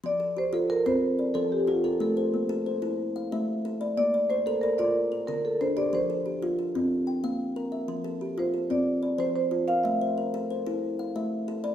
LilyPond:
<<
  \new Staff \with { instrumentName = "Marimba" } { \time 12/8 \key f \major \tempo 4. = 122 d''4 c''8 a'8 bes'8 c''4. a'8 g'8 f'8 a'8 | a'2. r2. | d''4 c''8 a'8 bes'8 d''4. bes'8 a'8 c''8 d''8 | c''2. r2. |
r4. c''4 d''4. c''8 c''4 f''8 | e''2. r2. | }
  \new Staff \with { instrumentName = "Kalimba" } { \time 12/8 \key f \major << { r8 a'8 g'4 a'8 f'4 d''8 c''4. bes'8~ | bes'8 c''8 bes4 c''8 a'4 f''8 e''4. d''8~ | d''8 d''8 c''4 d''8 bes'4 bes'8 a'4. g'8~ | g'8 a'8 g'4 a'8 f'4 g''8 f''4. e''8~ |
e''8 a'8 g'4 a'8 f'4 d''8 c''4. bes'8~ | bes'8 c''8 bes'4 c''8 a'4 f''8 e''4. d''8 | } \\ { f4 r8 f'4 c'4 r8 f4 f'4 | a4 r8 a'4 e'4 r8 a4 a'4 | bes4 r8 bes'4 f'8 r4 d4 d'4 | f4 r8 f'4 c'8 r4 bes4 bes'4 |
f4 r8 f'4 c'4 r8 f4 f'4 | a4 r8 a'4 e'4 r8 a4 a'4 | } >> }
>>